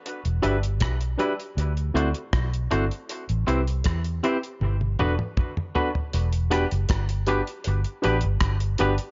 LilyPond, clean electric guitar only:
\new Staff \with { instrumentName = "Clean electric guitar" } { \time 4/4 \key e \minor \tempo 4 = 79 r8 <g d' e' b'>8 r8 <g d' e' b'>8 r8 <a d' fis' c''>8 r8 <a d' fis' c''>8 | r8 <c' e' g' c''>8 r8 <c' e' g' c''>8 r8 <b d' fis' b'>8 r8 <b d' fis' b'>8 | r8 <b d' g' b'>8 r8 <b d' g' b'>8 r8 <b d' g' b'>8 r8 <b d' g' b'>8 | }